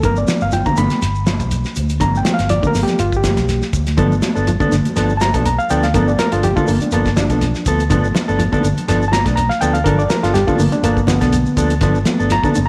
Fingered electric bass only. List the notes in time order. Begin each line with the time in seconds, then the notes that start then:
0.03 G1
0.28 muted fingered electric bass stroke
0.42 G1
0.66 muted fingered electric bass stroke
0.78 G1
0.91 muted fingered electric bass stroke
1.02 G1
1.40 B1
1.77 D2
2.01 G1
2.26 muted fingered electric bass stroke
2.39 G1
2.63 muted fingered electric bass stroke
2.75 G1
2.88 muted fingered electric bass stroke
3.00 G1
3.37 B1
3.73 D2
3.98 G1
4.24 muted fingered electric bass stroke
4.36 G1
4.60 muted fingered electric bass stroke
4.72 G1
4.85 muted fingered electric bass stroke
4.97 G1
5.34 B1
5.71 D2
5.95 G1
6.20 muted fingered electric bass stroke
6.33 G1
6.57 muted fingered electric bass stroke
6.69 G1
6.83 muted fingered electric bass stroke
6.94 G1
7.30 B1
7.66 D2
7.91 G1
8.16 muted fingered electric bass stroke
8.29 G1
8.53 muted fingered electric bass stroke
8.63 G1
8.77 muted fingered electric bass stroke
8.88 G1
9.26 B1
9.62 D2
9.86 G1
10.11 muted fingered electric bass stroke
10.24 G1
10.48 muted fingered electric bass stroke
10.59 G1
10.73 muted fingered electric bass stroke
10.83 G1
11.21 B1
11.57 D2
11.81 G1
12.08 muted fingered electric bass stroke
12.20 G1
12.43 muted fingered electric bass stroke
12.57 G1